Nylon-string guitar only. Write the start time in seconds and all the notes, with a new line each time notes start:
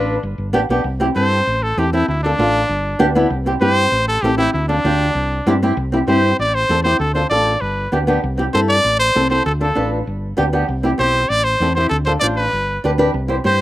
Already playing: D4 F4 B4
0.53 B3 D4 G4
0.70 B3 D4 G4
1.00 C4 E4 G4
1.15 C4 E4 A4
1.78 C4 E4 A4
1.93 C4 E4 A4
2.24 D4 F4 A4
2.39 D4 F4 A4
2.99 B3 D4 G4
3.15 B3 D4 E4
3.46 C4 E4 G4
3.61 C4 E4 G4
4.24 C4 E4 A4
4.38 C4 E4 G4
4.69 D4 F4 A4
4.85 D4 F4 G4
5.47 C4 E4 G4
5.63 C4 E4 G4
5.92 C4 E4 G4
6.08 C4 E4 G4
6.69 C4 E4 A4
6.85 C4 E4 G4
7.15 D4 F4 A4
7.31 D4 F4 A4
7.92 B3 D4 G4
8.07 B3 D4 G4
8.38 C4 E4 G4
8.53 C4 E4 A4
9.15 C4 E4 A4
9.30 C4 E4 A4
9.61 D4 F4 A4
9.75 D4 F4 B4
10.37 B3 D4 G4
10.53 B3 D4 G4
10.83 C4 E4 G4
10.98 C4 E4 G4
11.61 C4 E4 A4
11.77 C4 E4 G4
12.07 D4 F4 A4
12.21 D4 F4 C5
12.84 D4 G4 B4
12.98 D4 G4 B4
13.28 E4 G4 C5
13.44 E4 G4 C5